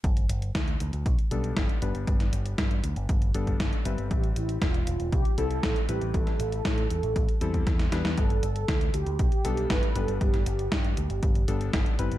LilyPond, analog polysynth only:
\new Staff \with { instrumentName = "Analog polysynth" } { \time 4/4 \key g \mixolydian \tempo 4 = 118 r1 | r1 | g'8 e'8 f'4 g'8 a'4 g'8 | a'2.~ a'8 r8 |
a'4. g'8 g'4 b'8 a'8 | g'2. r4 | }